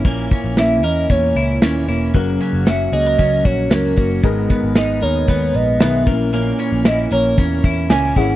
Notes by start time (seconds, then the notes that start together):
Already playing: C#4 E4 A#4
0.05 A#1 A#2 E3 A#3 C#4, kick, closed hi-hat
0.31 C#4, kick, closed hi-hat
0.44 A#1
0.57 A#2 E3 A#3 C#4 E4 E5, snare, closed hi-hat
0.83 E2 E3 A#3 C#4 A#4 D#5, closed hi-hat
1.09 E2 A#2 E3 A#3 C#4 C#5, kick, closed hi-hat
1.36 C#2 E4, closed hi-hat
1.62 D#2 A#2 E3 A#3 C#4, snare, closed hi-hat
1.88 E1 E3 A#3 C#4 E4, open hi-hat
2.14 F#1 F#2 C#3 F#3 A#3 C#4 F#4 A#4, kick, closed hi-hat
2.41 C#4, closed hi-hat
2.53 F#1
2.67 F#2 C#3 F#3 A#3 C#4 F#4 E5, snare, closed hi-hat
2.92 C#2 F#3 A#3 C#4 G#4 D#5, closed hi-hat
3.07 A#4
3.19 C#2 C#3 F#3 A#3 C#4, kick, closed hi-hat
3.45 A#1 F#4 C#5, kick, closed hi-hat
3.70 C#2 F#2 C#3 F#3 A#3 C#4 A#4, snare, closed hi-hat
3.97 F#1 F#3 A#3 C#4 F#4, kick, open hi-hat
4.23 G#1 G#2 D#3 G#3 B3 D#4 G#4 A#4, kick, closed hi-hat
4.50 B3, kick, closed hi-hat
4.63 G#1
4.75 G#2 D#3 G#3 B3 D#4 A#4 D#5, snare, closed hi-hat
5.02 D#2 G#3 B3 D#4 A#4 C#5, closed hi-hat
5.28 D#2 G#3 B3 D#4 A#4, kick, closed hi-hat
5.55 A#1 D#5, closed hi-hat
5.80 B1 G#2 D#3 G#3 B3 D#4 A#4 E5, snare, closed hi-hat
6.06 A#1 E3 A#3 C#4 E4 A#4, kick, open hi-hat
6.33 A#2 E3 A#3 C#4, closed hi-hat
6.59 C#4, closed hi-hat
6.72 A#1
6.85 A#2 E3 A#3 C#4 E4 D#5, snare, closed hi-hat
7.12 A#1 E3 A#3 C#4 A#4 C#5, closed hi-hat
7.37 E2 A#2 E3 A#3 C#4, kick, closed hi-hat
7.64 E2 E4, kick, closed hi-hat
7.89 C#2 A#2 E3 A#3 C#4 G#5, snare, closed hi-hat
8.16 G#1 E3 A#3 C#4 E4 G#4 F#5, kick, open hi-hat